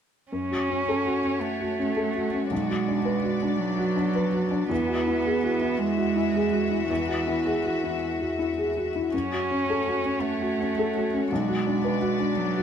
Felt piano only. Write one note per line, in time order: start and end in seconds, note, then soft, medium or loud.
0.32 2.47 F#2 soft
0.51 0.81 F#4 soft
0.70 0.99 C#4 soft
0.88 1.17 A4 soft
1.06 1.35 F#4 soft
1.25 1.78 C#4 soft
1.61 1.90 F#4 soft
1.79 2.08 C#4 soft
1.97 2.26 A4 soft
2.15 2.44 F#4 soft
2.34 2.51 C#4 soft
2.51 4.66 B1 soft
2.69 2.98 F#4 soft
2.88 3.16 D4 soft
3.05 3.34 B4 soft
3.24 3.52 F#4 soft
3.42 3.95 D4 soft
3.78 4.07 F#4 soft
3.96 4.25 D4 soft
4.15 4.44 B4 soft
4.33 4.62 F#4 soft
4.51 4.70 D4 soft
4.70 6.85 E2 medium
4.89 5.18 F#4 soft
5.07 5.36 E4 soft
5.25 5.54 G#4 soft
5.44 5.72 F#4 soft
5.62 6.14 E4 soft
5.98 6.27 F#4 soft
6.16 6.45 E4 soft
6.35 6.64 G#4 soft
6.53 6.82 F#4 soft
6.70 7.01 E4 soft
6.90 9.09 E2 soft
7.08 7.38 F#4 soft
7.27 7.57 E4 soft
7.46 7.75 G#4 soft
7.64 7.94 F#4 soft
7.84 8.37 E4 soft
8.20 8.50 F#4 soft
8.39 8.68 E4 soft
8.58 8.87 G#4 soft
8.77 9.06 F#4 soft
8.96 9.13 E4 soft
9.14 11.27 F#2 soft
9.33 9.61 F#4 soft
9.51 9.79 C#4 soft
9.70 9.98 A4 soft
9.88 10.16 F#4 soft
10.06 10.59 C#4 soft
10.42 10.70 F#4 soft
10.60 10.88 C#4 soft
10.79 11.06 A4 soft
10.97 11.24 F#4 soft
11.14 11.31 C#4 soft
11.32 12.63 B1 soft
11.49 11.77 F#4 soft
11.66 11.95 D4 soft
11.84 12.13 B4 soft
12.01 12.30 F#4 soft
12.19 12.63 D4 soft
12.57 12.63 F#4 soft